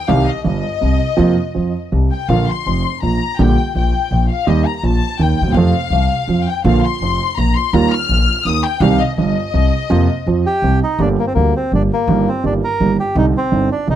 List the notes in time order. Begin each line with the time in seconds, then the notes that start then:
0.08 C2 C3 D#3 G3 C4 G4 F5
0.28 D#5
0.44 G1 G2 D#5
0.81 C2 C3
1.17 F2 C3 F3 A#3 F4
1.55 F2 F3
1.92 C2 C3
2.12 G5
2.29 A#1 A#2 D3 F3 A#3 F4 F5
2.47 C6
2.66 F1 F2
3.02 A#1 A#2 A#5
3.39 A#1 A#2 D3 G3 A#3 G4 G5
3.75 A#1 A#2 G5
4.11 A#1 A#2
4.30 F5
4.47 D#2 D#3 G3 A#3 G4 D#5
4.67 A#5
4.76 A#5
4.83 A#1 A#2 A5
5.19 D#2 D#3 G5
5.41 D2
5.46 D#2
5.50 E2
5.54 F2 C3 F3 A3 F4 F5
5.90 C2 C3
6.28 F2 F3
6.47 G5
6.64 A#1 A#2 D3 F3 A#3 F4 F5
6.84 C6
7.01 F1 F2
7.38 A#1 A#2 A#5
7.55 C6
7.73 D#2 D#3 G3 A#3 F4 A#5
7.92 F6
8.09 A#1 A#2
8.45 D#2 D#3 D#6
8.65 G5
8.80 C2 C3 D#3 G3 C4 G4 F5
9.00 D#5
9.17 G1 G2 D#5
9.54 C2 C3
9.90 F2 C3 F3 A#3 F4
10.27 F2 F3
10.46 G4
10.62 C2 C3
10.83 D#4
10.99 G1 G2 D3 G3 A#3 D4 G4
11.19 A#3
11.27 C4
11.35 D2 D3 G3 A#3 G4
11.56 C4
11.72 G1 G2 D3 G3 A#3 D4 G4
11.93 A#3
12.07 G1 G2 D#3 G3 A#3 G4
12.28 C4
12.43 G1 G2 D#3 G3 A#3 D4 G4
12.64 A#4
12.80 G1 G2 D#3 G3 A#3 G4
13.00 G4
13.15 C2 C3 D3 G3 C4 D#4
13.37 C4
13.52 G1 G2 D3 G3 C4 D#4
13.72 D4
13.87 C2 C3 D3 G3 C4 D#4